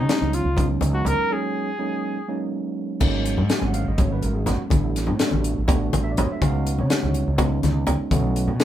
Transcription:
Already playing: D#4
0.09 F#3 G#3 B3 C#4 D#4, snare, closed hi-hat
0.21 C#2, high conga
0.33 F4, closed hi-hat
0.45 C#2
0.57 F#3 G#3 B3 C#4 D#4, kick, closed hi-hat, low conga
0.81 C#2, closed hi-hat, high conga
0.94 F#4
1.05 C#2 A#4, closed hi-hat, low conga
1.30 F#3 G#3 A#3 C#4 D#4 G#4
1.78 F#3 G#3 A#3 C#4 D#4
2.28 F#3 G#3 A#3 C#4 D#4
3.00 G#1 F#3 G#3 A#3 C#4 D#4, kick, crash, high conga
3.26 closed hi-hat
3.38 G#2, low conga
3.49 F#3 G#3 A#3 C#4 F#4, snare, closed hi-hat
3.59 G#1 G#5, high conga
3.67 F#5
3.74 F5, closed hi-hat
3.87 G#1 D#5
3.98 F#3 G#3 A#3 C#4 F#4 C#5, kick, closed hi-hat, low conga
4.12 B4
4.22 G#1 A#4, closed hi-hat
4.34 G#4
4.46 G#1 F#4, snare, closed hi-hat, low conga
4.70 A1 G3 A3 B3 D4 E4, kick, closed hi-hat, high conga
4.83 low conga
4.96 snare, closed hi-hat
5.07 A2, low conga
5.19 G3 A3 B3 D4 F#4, snare, closed hi-hat
5.31 A1, high conga
5.44 closed hi-hat
5.58 A1
5.68 G3 A3 B3 D4 F#4, kick, closed hi-hat, low conga
5.93 A1, closed hi-hat, high conga
6.04 E5
6.12 D5
6.17 A1 C#5, closed hi-hat, low conga
6.32 E5
6.42 C#2 G#3 B3 C#4 D#4 F#4 F5, kick, closed hi-hat, high conga
6.67 closed hi-hat
6.78 C#3 C#5, low conga
6.90 G#3 B3 C#4 D#4 F#4, snare, closed hi-hat
7.03 C#2, high conga
7.14 closed hi-hat
7.28 C#2
7.38 G#3 B3 C#4 D#4 F4, kick, closed hi-hat, low conga
7.63 C#2, snare, closed hi-hat, high conga
7.87 C#2, closed hi-hat, low conga
8.11 B1 A3 B3 C#4 E4 F#4, kick, closed hi-hat, high conga, low conga
8.36 closed hi-hat
8.48 B2, low conga
8.60 A3 B3 C#4 E4 G#4, snare, closed hi-hat

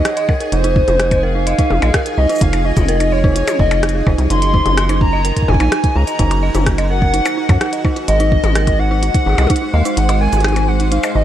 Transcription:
Already playing: D#4 G#4 D#5 F#5 G#5
0.05 D#4, cross-stick, closed hi-hat
0.17 D#5, closed hi-hat
0.29 A#4, kick, percussion blips
0.40 A#4, closed hi-hat
0.52 F1 D#4 F4 G#4 C5, closed hi-hat
0.64 D#4, closed hi-hat
0.76 D#4, kick
0.88 F1 D#4, closed hi-hat, high tom
1.00 D#4, cross-stick, closed hi-hat
1.11 D#5, kick, closed hi-hat, percussion blips
1.23 A#4 F5
1.35 D#4
1.47 D#5, closed hi-hat
1.59 D#4, kick, closed hi-hat
1.70 F1 D#4, high tom
1.82 A#1 D#5, closed hi-hat, percussion blips
1.94 A#4, kick, cross-stick, closed hi-hat
2.06 A#4, closed hi-hat
2.18 C2 D#4 D#5
2.29 D#4, closed hi-hat, shaker
2.32 shaker
2.35 shaker
2.38 F1 D#4 F5, kick, closed hi-hat, shaker
2.53 D#4, closed hi-hat, percussion blips
2.65 D#4 D#5
2.77 F1 D#5, kick, closed hi-hat, high tom, shaker
2.88 A#4, closed hi-hat
3.00 D#4, closed hi-hat, percussion blips
3.12 C#5 D#5
3.24 D#4, kick
3.36 D#4 C#5, closed hi-hat
3.48 D#5, closed hi-hat, high tom, percussion blips, shaker
3.59 F1 D#4 D#5, kick
3.71 D#5, closed hi-hat, percussion blips
3.83 D#4, cross-stick, closed hi-hat
3.89 closed hi-hat
3.95 G#4
4.07 F1 D#4, kick, percussion blips
4.18 C2 D#4, closed hi-hat
4.30 F#1 D#4 F#4 A#4 C6, closed hi-hat
4.42 D#5, closed hi-hat
4.54 D#4, kick
4.66 F#1 D#4, closed hi-hat, high tom
4.77 D#5, cross-stick, closed hi-hat
4.89 D#4, closed hi-hat, percussion blips
5.01 D#4 A#5, kick
5.13 D#5
5.25 A#4, closed hi-hat
5.37 A#4, kick, closed hi-hat
5.42 kick
5.48 F#1 D#4 G#5, kick, high tom
5.54 kick
5.60 A#1 D#4, closed hi-hat, percussion blips
5.72 D#4, cross-stick, closed hi-hat
5.84 D#4, kick, closed hi-hat
5.96 C#2 D#4 A#5
6.07 D#5, closed hi-hat, shaker
6.19 F#1 D#4, kick, closed hi-hat
6.31 D#4, closed hi-hat, percussion blips
6.43 D#5
6.55 F#1 D#4, closed hi-hat, high tom, shaker
6.66 D#4, kick, cross-stick, closed hi-hat
6.78 D#5, closed hi-hat, percussion blips
6.90 A#4 F#5
7.02 A#4, kick
7.14 D#4, closed hi-hat
7.25 D#4, closed hi-hat, percussion blips, shaker
7.37 D#4
7.49 F#2 D#4, kick, closed hi-hat, percussion blips
7.61 D#4, cross-stick, closed hi-hat
7.73 D#5, closed hi-hat
7.85 D#4, kick, percussion blips
7.96 D#4, closed hi-hat
8.08 G#1 G#3 C5 D#5, closed hi-hat
8.20 D#4, closed hi-hat
8.32 D#4, kick
8.44 G#1 D#5, closed hi-hat, high tom
8.55 A#4, cross-stick, closed hi-hat
8.67 A#4, kick, closed hi-hat, percussion blips
8.79 D#4 F#5
8.91 D#4
9.03 D#4, closed hi-hat
9.14 D#4, kick, closed hi-hat
9.26 G#1 D#4, high tom
9.29 high tom
9.32 high tom
9.35 C2 D#5, closed hi-hat, high tom
9.38 high tom, percussion blips
9.41 high tom
9.44 high tom
9.47 D#4, kick, closed hi-hat, high tom
9.56 closed hi-hat
9.62 D#4
9.74 D#2 D#5 F5
9.85 D#4, closed hi-hat, shaker
9.97 G#1 D#4 F#5, closed hi-hat
10.09 D#5, closed hi-hat, percussion blips
10.21 A#4 G#5
10.33 G#1 A#4, closed hi-hat, high tom, shaker
10.37 closed hi-hat, high tom
10.40 cross-stick, closed hi-hat, high tom
10.44 D#4, closed hi-hat, high tom
10.48 high tom
10.52 D#4, closed hi-hat, high tom, percussion blips
10.68 D#4 F#5
10.80 D#4, closed hi-hat
10.92 D#4 F5, closed hi-hat
11.03 D#5, percussion blips, shaker
11.15 G#1 D#4 D#5

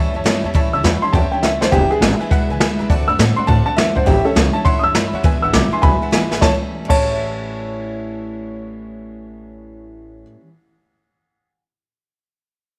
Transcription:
Already playing: E2 A2 E3 G3 C#4 E4 C#5 A5
0.14 F#2 G3 C#4 E4 C#5 E5 A5
0.24 G2 E3 G3 C#4 E4 C#5 E5 A5, snare
0.44 E2 G3 C#4 E4 C#5 E5 A5
0.54 A1 A2 E3 G3 C#4 E4 C#5 E5 A5, kick, open hi-hat
0.73 C#2 G3 C#4 E4 C#5 E5 A5 E6
0.83 E2 E3 G3 C#4 E4 C#5 E5 B5, snare, open hi-hat
1.02 G3 C#4 E4 C#5 E5 A5 C6, muted upright bass stroke
1.13 E2 A2 E3 G3 C#4 E4 C#5 E5 G5 A5, kick, open hi-hat
1.32 G3 C#4 E4 C#5 E5 G5 A5, muted upright bass stroke
1.42 C#2 E3 G3 C#4 E4 C#5 E5 A5, snare
1.61 D2 G3 C#4 E4 C5 C#5 E5 A5, snare
1.72 E1 E2 B2 E3 G#3 D4 E4 G4 B4 E5 G#5, kick, open hi-hat
1.90 G#3 D4 E4 G#4 B4 E5 G#5, muted upright bass stroke
2.01 G#1 E3 G#3 D4 B4 E5 G#5, snare, open hi-hat
2.05 E4
2.20 E3 G#3 D4 E4 B4 E5 G#5, muted upright bass stroke
2.30 B1 E2 B2 E3 G#3 D4 E4 B4 E5 F#5, kick, open hi-hat
2.49 C#2 E3 G#3 D4 E4 B4 E5 G#5
2.60 D2 E3 G#3 D4 E4 B4 E5 G#5, snare, open hi-hat
2.79 B1 E3 G#3 D4 E4 B4 E5 B5
2.89 D2 D3 A3 C4 F#4 D5 F#5 A5, kick, open hi-hat
3.08 F#2 A3 C4 F#4 D5 F#5 B5 E6
3.19 A2 D3 A3 C4 F#4 D5 F#5 A5, snare
3.36 A3 C4 F#4 D5 F#5 B5 C6, muted upright bass stroke
3.47 A2 D3 A3 C4 F#4 D5 F#5 A5, kick, open hi-hat
3.66 A3 C4 F#4 D5 F#5 A5, muted upright bass stroke
3.77 F#2 D3 A3 C4 F#4 D5 E5 F#5, snare
3.95 F#2 A3 C4 F#4 C5 D5 F#5 A5, kick
4.06 A1 A2 E3 G3 C#4 E4 G4 C#5 E5 A5, kick, open hi-hat
4.24 G3 C#4 E4 A4 C#5 E5 A5, muted upright bass stroke
4.35 C#2 E3 G3 C#4 E4 C#5 E5 A5, snare
4.53 G3 C#4 E4 C#5 E5 A5
4.65 E2 A2 E3 G3 C#4 E4 C#5 E5 F#5 C6, kick, open hi-hat
4.79 D#6
4.83 F#2 G3 C#4 E4 C#5 E5 A5 E6
4.94 G2 E3 G3 C#4 E4 C#5 E5 B5, snare, open hi-hat
5.13 E2 G3 C#4 E4 C#5 E5 F#5
5.23 E1 E2 B2 E3 G#3 D4 E4 B4 E5 G#5, kick, open hi-hat
5.42 G#1 E3 G#3 D4 E4 B4 E5 F#5 E6
5.53 B1 E3 G#3 D4 E4 B4 E5 F#5 D6, snare
5.71 E3 G#3 D4 E4 B4 E5 G#5 C6, muted upright bass stroke
5.82 B1 E2 B2 E3 G#3 D4 E4 B4 E5 G#5 B5, kick, open hi-hat
6.02 E3 G#3 D4 E4 B4 E5 F#5, muted upright bass stroke
6.11 G#1 E3 G#3 D4 E4 B4 E5 G#5, snare, open hi-hat
6.31 G#1 E3 G#3 D4 E4 B4 E5 G#5, snare
6.37 A2 C#5
6.41 A1 E3 C#5 E5 A5, kick, snare
6.47 G3 C#4
6.54 E4
6.85 A2 C#5
6.89 A1 E3 C#5 E5 A5, kick, crash
6.95 G3 C#4
7.02 E4

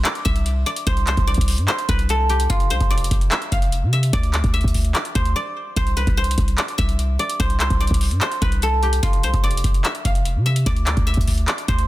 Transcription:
Already playing: C5
0.05 D5, clap, closed hi-hat
0.15 closed hi-hat
0.25 C2 E5, kick, closed hi-hat
0.36 closed hi-hat
0.46 closed hi-hat
0.66 D5, closed hi-hat
0.76 closed hi-hat
0.87 C2 C5, kick, closed hi-hat
0.97 closed hi-hat
1.07 C5, clap, closed hi-hat
1.17 C2, kick, closed hi-hat
1.27 D5, closed hi-hat
1.34 C2, kick, closed hi-hat
1.41 closed hi-hat
1.48 open hi-hat
1.58 G2, closed hi-hat
1.68 C5, clap, closed hi-hat
1.79 closed hi-hat
1.89 C2 B4, kick, closed hi-hat
1.99 closed hi-hat
2.09 A4, closed hi-hat
2.30 G4, closed hi-hat
2.40 closed hi-hat
2.50 F1 F4, kick, closed hi-hat
2.60 closed hi-hat
2.70 C2 C5, closed hi-hat
2.81 F1, kick, closed hi-hat
2.90 D5, closed hi-hat
2.98 closed hi-hat
3.04 closed hi-hat
3.11 F1, kick, closed hi-hat
3.21 closed hi-hat
3.32 E5, clap, closed hi-hat
3.42 closed hi-hat
3.52 F1 F5, kick, closed hi-hat
3.62 closed hi-hat
3.72 closed hi-hat
3.83 C3
3.93 E5, closed hi-hat
4.03 closed hi-hat
4.13 D2 D5, kick, closed hi-hat
4.23 closed hi-hat
4.34 D5, clap, closed hi-hat
4.44 D2, kick, closed hi-hat
4.54 E5, closed hi-hat
4.61 D2, kick, closed hi-hat
4.68 closed hi-hat
4.74 kick, open hi-hat
4.85 closed hi-hat
4.95 D5, clap, closed hi-hat
5.05 closed hi-hat
5.15 D2 C5, kick, closed hi-hat
5.25 closed hi-hat
5.36 D5
5.76 C2 C5, kick, closed hi-hat
5.87 closed hi-hat
5.97 B4, closed hi-hat
6.07 C2, kick, closed hi-hat
6.17 C5, closed hi-hat
6.24 closed hi-hat
6.31 closed hi-hat
6.38 C2, kick, closed hi-hat
6.48 closed hi-hat
6.58 D5, clap, closed hi-hat
6.68 closed hi-hat
6.78 C2 E5, kick, closed hi-hat
6.89 closed hi-hat
6.99 closed hi-hat
7.19 D5, closed hi-hat
7.30 closed hi-hat
7.40 C2 C5, kick, closed hi-hat
7.50 closed hi-hat
7.60 C5, clap, closed hi-hat
7.70 C2, kick, closed hi-hat
7.80 D5, closed hi-hat
7.87 C2, kick, closed hi-hat
7.94 closed hi-hat
8.01 open hi-hat
8.11 G2, closed hi-hat
8.21 C5, clap, closed hi-hat
8.32 closed hi-hat
8.42 C2 B4, kick, closed hi-hat
8.52 closed hi-hat
8.62 A4, closed hi-hat
8.83 G4, closed hi-hat
8.93 closed hi-hat
9.03 F1 F4, kick, closed hi-hat
9.13 closed hi-hat
9.23 C2 C5, closed hi-hat
9.34 F1, kick, closed hi-hat
9.44 D5, closed hi-hat
9.51 closed hi-hat
9.57 closed hi-hat
9.64 F1, kick, closed hi-hat
9.74 closed hi-hat
9.85 E5, clap, closed hi-hat
9.95 closed hi-hat
10.05 F1 F5, kick, closed hi-hat
10.15 closed hi-hat
10.25 closed hi-hat
10.36 C3
10.46 E5, closed hi-hat
10.56 closed hi-hat
10.66 D2 D5, kick, closed hi-hat
10.76 closed hi-hat
10.87 D5, clap, closed hi-hat
10.97 D2, kick, closed hi-hat
11.07 E5, closed hi-hat
11.14 D2, kick, closed hi-hat
11.21 closed hi-hat
11.28 kick, open hi-hat
11.38 closed hi-hat
11.48 D5, clap, closed hi-hat
11.58 closed hi-hat
11.68 D2 C5, kick, closed hi-hat
11.79 closed hi-hat

